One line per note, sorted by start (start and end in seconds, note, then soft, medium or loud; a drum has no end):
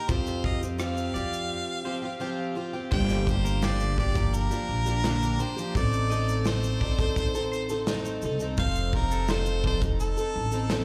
0.00 0.12 A#4 medium
0.09 1.11 F2 loud
0.09 0.62 F3 medium
0.09 0.62 C4 medium
0.09 0.61 F4 medium
0.09 0.60 G4 medium
0.09 0.44 C5 medium
0.09 kick loud
0.09 shaker medium
0.27 cross-stick soft
0.27 shaker soft
0.44 0.61 D#5 medium
0.44 0.61 F5 medium
0.44 kick medium
0.61 0.77 C4 soft
0.61 0.78 F4 medium
0.61 0.78 G4 medium
0.61 shaker medium
0.78 1.13 F3 medium
0.78 1.14 C4 medium
0.78 1.15 F4 medium
0.78 1.15 G4 medium
0.78 2.53 F5 loud
0.78 cross-stick loud
0.78 shaker medium
0.97 shaker soft
1.14 1.49 F2 medium
1.14 1.84 F3 medium
1.14 1.84 C4 medium
1.14 1.86 F4 medium
1.14 1.86 G4 medium
1.14 1.64 D5 medium
1.14 shaker soft
1.33 shaker medium
1.84 2.03 F3 medium
1.84 2.03 C4 medium
1.84 2.02 F4 medium
1.84 2.01 G4 medium
1.84 2.02 C5 medium
2.02 2.19 C4 soft
2.02 2.20 F4 soft
2.02 2.20 G4 medium
2.20 2.54 F3 medium
2.20 2.55 C4 medium
2.20 2.56 F4 medium
2.20 2.56 G4 loud
2.55 2.73 F3 medium
2.55 2.74 C4 medium
2.55 2.73 F4 medium
2.55 2.72 G4 medium
2.73 2.92 C4 soft
2.73 2.92 F4 soft
2.73 2.91 G4 medium
2.91 4.47 G1 loud
2.91 3.27 G2 medium
2.91 3.27 D3 medium
2.91 3.25 F3 medium
2.91 3.26 A#3 medium
2.91 3.27 D4 medium
2.91 3.28 G4 medium
2.91 3.25 C5 loud
2.91 3.31 G5 loud
2.91 kick loud
2.91 crash medium
3.09 snare soft
3.09 shaker medium
3.26 3.62 F3 medium
3.26 3.62 A#3 medium
3.26 3.62 D4 medium
3.26 3.63 G4 medium
3.26 3.65 C5 medium
3.26 kick medium
3.26 shaker medium
3.44 3.62 A#4 medium
3.44 shaker medium
3.62 3.98 G2 medium
3.62 3.98 D3 medium
3.62 3.96 F3 medium
3.62 3.97 A#3 medium
3.62 3.98 D4 medium
3.62 3.99 G4 medium
3.62 3.96 C5 medium
3.62 3.98 D5 medium
3.62 snare loud
3.62 shaker medium
3.80 shaker soft
3.98 4.15 F3 medium
3.98 4.16 A#3 medium
3.98 4.15 D4 medium
3.98 4.14 G4 medium
3.98 4.15 D5 medium
3.98 4.37 D5 loud
3.98 kick medium
4.15 4.52 F3 soft
4.15 4.51 A#3 soft
4.15 4.50 D4 soft
4.15 4.49 G4 medium
4.15 kick medium
4.15 shaker medium
4.34 5.43 A#4 loud
4.34 shaker medium
4.50 4.87 F3 soft
4.50 4.86 A#3 soft
4.50 4.85 D4 soft
4.50 4.85 G4 soft
4.50 shaker medium
4.69 5.36 A#1 medium
4.86 5.03 F3 soft
4.86 5.04 A#3 soft
4.86 5.04 D4 medium
4.86 5.04 G4 medium
4.86 shaker medium
5.04 5.39 G2 medium
5.04 5.40 D3 medium
5.04 5.38 F3 medium
5.04 5.39 A#3 medium
5.04 5.40 D4 medium
5.04 5.40 G4 medium
5.04 snare loud
5.04 shaker medium
5.23 shaker soft
5.39 5.57 F3 medium
5.39 5.57 A#3 medium
5.39 5.57 D4 medium
5.39 5.55 G4 medium
5.39 5.75 C5 medium
5.39 shaker soft
5.56 5.75 F3 soft
5.56 5.75 A#3 soft
5.56 5.75 D4 soft
5.56 5.74 G4 medium
5.56 shaker soft
5.75 6.77 A1 loud
5.75 6.09 A3 medium
5.75 6.10 C4 medium
5.75 6.11 D#4 medium
5.75 6.11 A4 medium
5.75 6.49 D5 loud
5.75 kick loud
5.75 shaker medium
5.93 shaker medium
6.10 6.44 A3 medium
6.10 6.45 C4 medium
6.10 6.46 D#4 medium
6.10 6.46 A4 medium
6.10 6.27 D#5 medium
6.10 shaker medium
6.29 shaker medium
6.45 6.80 A3 medium
6.45 6.81 C4 medium
6.45 6.82 D#4 medium
6.45 6.82 A4 medium
6.45 8.23 C5 loud
6.45 snare loud
6.45 shaker medium
6.63 shaker soft
6.80 8.19 A1 medium
6.80 6.99 A3 medium
6.80 6.99 C4 medium
6.80 6.99 D#4 medium
6.80 6.98 A4 medium
6.80 7.31 D5 medium
6.80 kick medium
6.99 7.36 C4 soft
6.99 7.35 D#4 soft
6.99 7.34 A4 medium
6.99 kick medium
6.99 shaker medium
7.16 kick medium
7.16 shaker medium
7.35 7.71 C4 medium
7.35 7.71 D#4 medium
7.35 7.69 A4 medium
7.35 shaker medium
7.52 7.69 C5 medium
7.52 shaker soft
7.69 7.87 C4 soft
7.69 7.88 D#4 medium
7.69 7.87 A4 medium
7.69 shaker medium
7.87 8.22 A3 medium
7.87 8.23 C4 loud
7.87 8.23 D#4 loud
7.87 8.24 A4 loud
7.87 snare loud
7.87 shaker medium
8.05 shaker soft
8.22 8.55 C2 medium
8.22 8.41 A3 medium
8.22 8.41 C4 medium
8.22 8.41 D#4 medium
8.22 8.39 A4 medium
8.22 shaker soft
8.40 8.58 C4 soft
8.40 8.59 D#4 medium
8.40 8.58 A4 medium
8.40 shaker soft
8.58 10.13 F1 loud
8.58 8.93 F3 medium
8.58 8.94 C4 medium
8.58 8.95 D#4 medium
8.58 8.95 A4 medium
8.58 8.92 C5 medium
8.58 8.96 F5 loud
8.58 kick loud
8.58 shaker medium
8.75 shaker soft
8.93 9.28 F3 medium
8.93 9.29 C4 medium
8.93 9.29 D#4 medium
8.93 9.33 A#4 medium
8.93 kick medium
9.11 9.28 A4 medium
9.11 shaker medium
9.28 9.63 F3 medium
9.28 9.64 C4 medium
9.28 9.65 D#4 medium
9.28 9.65 A4 medium
9.28 9.64 C5 medium
9.28 9.65 C5 loud
9.28 snare loud
9.28 shaker medium
9.46 shaker soft
9.64 9.82 F3 medium
9.64 9.82 C4 medium
9.64 9.82 D#4 medium
9.64 9.80 A4 medium
9.64 9.82 C5 medium
9.64 9.81 D5 medium
9.64 kick medium
9.82 10.18 C4 soft
9.82 10.18 D#4 soft
9.82 10.16 A4 medium
9.82 kick loud
9.82 shaker medium
10.00 10.85 A4 medium
10.00 shaker medium
10.17 10.53 C4 soft
10.17 10.52 D#4 soft
10.17 10.51 A4 medium
10.17 shaker medium
10.36 10.85 A1 medium
10.52 10.70 C4 soft
10.52 10.71 D#4 soft
10.52 10.70 A4 medium
10.52 shaker medium
10.70 10.85 F3 medium
10.70 10.85 C4 medium
10.70 10.85 D#4 medium
10.70 10.85 A4 medium
10.70 snare loud
10.70 shaker medium